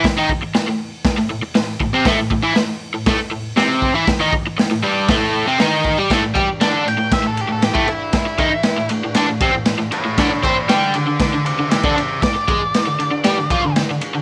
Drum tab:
RD |----------------|----------------|----------------|x-x-x-x-x-x-x-x-|
HH |o---o---o---o---|o---o---o---o---|o---o---o---o---|----------------|
SD |o---o---o---o---|o---o---o---o---|o---o---o---o---|o---o---o---o---|
BD |o-o-----o-----o-|o-o-----o-----o-|o-o-----o-----o-|o-o-----o----o--|

RD |x-x-x-x-x-x-x-x-|x-x-x-x-x-x-x-x-|x-x-x-x-x-x-x-x-|
HH |----------------|----------------|----------------|
SD |o---o---o---o---|o---o---o---o---|o---o---o---o---|
BD |o-o-------o-----|o-o-----o----o--|o-o-------o-----|